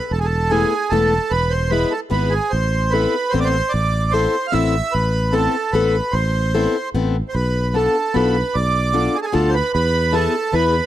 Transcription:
Already playing: accordion B4
0.11 fretless electric bass E1, accordion A4
0.20 accordion G#4
0.24 accordion A4
0.50 steel-string acoustic guitar A3 B3 E4 A4, accordion G#4
0.90 fretless electric bass E1, steel-string acoustic guitar A3 B3 E4 A4, accordion A4
1.30 fretless electric bass E1, accordion B4
1.50 accordion C5
1.70 steel-string acoustic guitar G#3 B3 E4 G#4, accordion B4
1.91 accordion A4
2.10 fretless electric bass G#1, steel-string acoustic guitar G#3 B3 E4 G#4, accordion B4
2.30 accordion G#4
2.50 fretless electric bass A1, accordion C5
2.91 steel-string acoustic guitar B3 C4 A4, accordion B4
2.95 steel-string acoustic guitar E4
3.30 steel-string acoustic guitar B3 C4, accordion C5
3.34 fretless electric bass A1, steel-string acoustic guitar E4 A4
3.40 accordion D5
3.45 accordion C5
3.69 accordion D5
3.74 fretless electric bass A1
4.11 steel-string acoustic guitar B3 C4 E4 A4, accordion C5
4.47 accordion F5
4.52 fretless electric bass A1, steel-string acoustic guitar B3 C4 E4 A4, accordion E5
4.92 fretless electric bass A1, accordion B4
5.32 steel-string acoustic guitar B3 C4 E4 A4, accordion A4
5.72 fretless electric bass A1, steel-string acoustic guitar B3 C4 E4 A4, accordion B4
6.12 fretless electric bass A1, accordion C5
6.55 steel-string acoustic guitar B3 C4 E4 A4
6.94 fretless electric bass A1, steel-string acoustic guitar B3 C4 E4 A4
7.29 accordion C5
7.34 fretless electric bass B1, accordion B4
7.74 steel-string acoustic guitar B3 D4 F4 A4, accordion A4
8.14 fretless electric bass B1, steel-string acoustic guitar B3 D4 F4 A4, accordion B4
8.54 fretless electric bass B1, accordion D5
8.93 steel-string acoustic guitar B3 D4 F4 A4
9.15 accordion G#4
9.22 accordion G#4 A4
9.32 fretless electric bass D2, steel-string acoustic guitar B3 D4 F4 A4, accordion A4
9.49 accordion C5
9.54 accordion B4
9.73 fretless electric bass E2, accordion B4
10.13 steel-string acoustic guitar B3 E4 G#4 B4, accordion A4
10.53 fretless electric bass E2, steel-string acoustic guitar B3 E4 G#4 B4, accordion B4

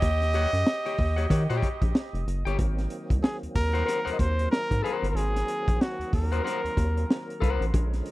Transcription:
Already playing: tenor saxophone G4, trumpet D#5
0.02 analog synth bass D#2, kick, closed hi-hat
0.22 snare, closed hi-hat
0.33 clean electric guitar G4 C#5 F#5, closed hi-hat
0.53 analog synth bass F#2, closed hi-hat
0.67 snare
0.86 clean electric guitar G4 C#5 G5, closed hi-hat
0.98 analog synth bass D#2, kick, open hi-hat
1.16 clean electric guitar G4 C#5 F#5, closed hi-hat
1.30 analog synth bass D#3, clean electric guitar G4 C#5 F#5, kick, snare, closed hi-hat
1.50 analog synth bass A#2, clean electric guitar G4 C#5 G5, closed hi-hat
1.63 kick, closed hi-hat
1.82 analog synth bass A#1, kick, closed hi-hat
1.95 snare
2.13 analog synth bass F1, closed hi-hat
2.27 analog synth bass F#1, closed hi-hat
2.45 analog synth bass G1, clean electric guitar G4 C#5 G5, closed hi-hat
2.59 analog synth bass G#1, tonewheel organ D#3 F#3 A#3 C4, kick, closed hi-hat
2.78 snare, closed hi-hat
2.90 closed hi-hat
3.10 analog synth bass C2, kick, closed hi-hat
3.23 trumpet G#4, snare
3.43 analog synth bass D#2, closed hi-hat
3.55 analog synth bass D#2, trumpet A#4, kick, open hi-hat
3.73 clean electric guitar A#4 C5 F#5, closed hi-hat
3.86 clean electric guitar A#4 C5 F#5, snare, closed hi-hat
4.05 analog synth bass D#2, clean electric guitar A#4 C5 F#5, closed hi-hat
4.13 trumpet D#5
4.19 analog synth bass D#2, trumpet C5, kick, closed hi-hat
4.39 closed hi-hat
4.51 trumpet A#4, snare
4.71 analog synth bass G#2, kick, closed hi-hat
4.82 trumpet G#4, clean electric guitar A#4 C5 F#5, closed hi-hat
5.03 analog synth bass G1, closed hi-hat
5.11 analog synth bass G#1, trumpet A#4
5.16 trumpet G#4, closed hi-hat
5.36 snare, closed hi-hat
5.48 closed hi-hat
5.68 analog synth bass A#1, kick, closed hi-hat
5.81 trumpet F#4, snare
5.99 analog synth bass D#2, closed hi-hat
6.13 analog synth bass D#2, trumpet A#4, kick, open hi-hat
6.32 clean electric guitar A#4 C5 F#5, closed hi-hat
6.44 clean electric guitar A#4 C5 F#5, snare, closed hi-hat
6.64 analog synth bass D#2, closed hi-hat
6.77 analog synth bass D#2, kick, closed hi-hat
6.97 closed hi-hat
7.10 snare
7.30 closed hi-hat
7.40 analog synth bass C2, clean electric guitar A#4 C5 F#5, kick, closed hi-hat
7.60 analog synth bass A1, closed hi-hat
7.74 analog synth bass A#1, tonewheel organ D3 F3 G#3 C#4, kick, closed hi-hat
7.93 snare, closed hi-hat
8.06 closed hi-hat

